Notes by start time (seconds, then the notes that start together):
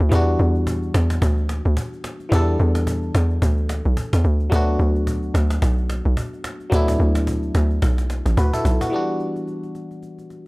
0.00 D2
0.09 E2 E3 G3 B3, cajon bass
0.14 D4 F#4
0.39 E2, cajon slap
0.55 cajon slap
0.67 cajon bass
0.83 cajon slap
0.94 E2, cajon slap
1.10 cajon slap
1.22 D2, cajon bass
1.38 cajon slap
1.49 cajon slap
1.65 D2, cajon slap
1.77 cajon bass
1.93 cajon slap
2.04 cajon slap
2.20 cajon slap
2.29 E2 E3 G3 B3, cajon bass
2.33 D4 A4
2.59 E2, cajon slap
2.75 cajon slap
2.87 cajon bass
3.03 cajon slap
3.15 E2, cajon slap
3.30 cajon slap
3.42 D2, cajon bass
3.58 cajon slap
3.69 cajon slap
3.85 B1, cajon slap
3.97 cajon bass
4.13 E2, cajon slap
4.24 D2
4.40 cajon slap
4.50 D2 F#3 A3 B3, cajon bass
4.54 D4 F#4
4.79 D2, cajon slap
4.95 cajon slap
5.07 cajon bass
5.23 cajon slap
5.34 D2, cajon slap
5.50 cajon slap
5.62 B1, cajon bass
5.78 cajon slap
5.90 cajon slap
6.05 B1, cajon slap
6.17 cajon bass
6.33 cajon slap
6.44 cajon slap
6.60 cajon slap
6.70 D2 F#3 A3 B3, cajon bass
6.74 D4 E4
6.88 cajon bass
7.00 D2
7.15 cajon slap
7.27 cajon bass
7.43 cajon slap
7.55 D2, cajon slap
7.71 cajon slap
7.82 B1, cajon bass, cajon slap
7.98 cajon slap
8.10 cajon slap
8.26 A1, cajon slap
8.37 D2 F#4 B4, cajon bass
8.53 E4 A4, cajon bass
8.65 B1, cajon bass
8.81 B3 F#4, cajon bass
8.90 E3 G3 B3, cajon slap
8.94 D4 F#4
9.20 cajon slap
9.36 cajon slap
9.48 cajon slap
9.63 cajon slap
9.75 cajon slap
9.91 cajon slap
10.03 cajon slap
10.18 cajon slap
10.30 cajon slap